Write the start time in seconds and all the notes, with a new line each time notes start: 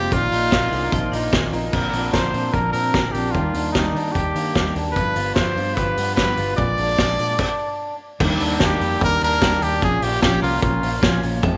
Already playing: F3 G#3 A#3 C4 F4 G4
0.12 A#1 A#2 D#3 A#3 D#4 F4, kick, closed hi-hat
0.32 A#1 A#3 D#4 F4, open hi-hat
0.51 A#1 A#2 D#3 A#3 C4 D#4 F4, kick, snare, closed hi-hat
0.71 C2 A#3 D4 D#4 F4 G#4, open hi-hat
0.83 A#4
0.92 A#1 D#3 F3 A#3 D#4 F4, kick, closed hi-hat
1.12 A#1 A#3 D4 D#4 F4, open hi-hat
1.33 A#1 A#2 D#3 A#3 C4 D#4 F4, kick, snare, closed hi-hat
1.52 A#1 A#3 D#4 F4, open hi-hat
1.72 A#1 A#2 D3 F3 C4 D4 A#4, kick, crash
1.92 A#1 F3 C4 D4, open hi-hat
2.12 A#1 A#2 D3 F3 C4 D4 A#4 C5, kick, snare, closed hi-hat
2.33 A#2 F3 C4 D4, open hi-hat
2.53 A#1 D3 F3 C4 D4 A#4, kick, closed hi-hat
2.72 A#2 F3 C4 D4 A#4, open hi-hat
2.94 A#1 A#2 D3 F3 C4 D4 A#4, kick, snare, closed hi-hat
3.12 A#1 C4 D4 G4, open hi-hat
3.16 F3
3.31 D#2 F4, kick, closed hi-hat
3.35 D#3 G3 A#3 D4
3.53 D#2 G3 A#3 D4, open hi-hat
3.72 D#2 D#3 G3 A#3 D#4 G4, kick, snare, closed hi-hat
3.76 D4
3.94 D#3 G3 A#3 D4, open hi-hat
4.12 D#2 D#3 G4, kick
4.16 G3 A#3 D4 G4, closed hi-hat
4.35 D#3 G3 A#3 D4, open hi-hat
4.55 D#2 D#3 G3 A#3 D4 G4, kick, snare, closed hi-hat
4.75 D#2 G3 A#3 D4, open hi-hat
4.92 B4
4.96 G1 G2 D3 F3 B3 D4, kick, closed hi-hat
5.16 G1 F3 B3 D4 F4, open hi-hat
5.34 G1 G2 D3 F3 B3 D4 G4 C5, kick, snare, closed hi-hat
5.56 G2 F3 B3 D4 F4, open hi-hat
5.74 G1 D3 G4 B4, kick, closed hi-hat
5.79 F3 B3 D4
5.97 G2 F3 B3 D4, open hi-hat
6.15 G1 G2 D3 G4 B4, kick, snare, closed hi-hat
6.19 F3 B3 D4
6.37 G1 F3 B3 D4 F4, open hi-hat
6.57 A#1 A#2 F3 G#3 D4 D5, kick, closed hi-hat
6.78 A#1 F3 G#3 D4, open hi-hat
6.98 A#1 A#2 F3 G#3 D4 G#4, kick, snare, closed hi-hat
7.18 A#2 F3 G#3 D4, open hi-hat
7.39 kick, crash
8.20 D#2 D#3 G3 A#3 D4, kick, crash
8.40 D#2 G3 A#3 D4, open hi-hat
8.60 D#2 D#3 G3 A#3 D4, kick, snare, closed hi-hat
8.64 G4
8.80 F2 G3 A#3 D4 G4, open hi-hat
9.01 D#2 D#3 G3 A#3 D4 A#4, kick, closed hi-hat
9.21 D#2 G3 A#3 D4 A#4, open hi-hat
9.41 D#2 D#3 G3 A#3 D4, kick, snare, closed hi-hat
9.61 D#2 G3 A#3 D4 G4, open hi-hat
9.81 A#1 A#2 F3 A#3 C#4 G#4, kick, closed hi-hat
10.02 A#1 F3 A#3 C#4 F4 G4, open hi-hat
10.22 A#1 A#2 F3 A#3 C#4 G4, kick, snare, closed hi-hat
10.42 C2 F3 A#3 C#4 F4 A#4, open hi-hat
10.62 A#1 A#2 F3 A#3 C#4 F4, kick, closed hi-hat
10.83 A#1 F3 A#3 C#4 F4, open hi-hat
11.02 A#1 A#2 F3 A#3 C#4, kick, snare, closed hi-hat
11.23 A#1 F3 A#3 C#4 F4, open hi-hat
11.42 F1 F2 C3 F3 G#3 C4, kick, closed hi-hat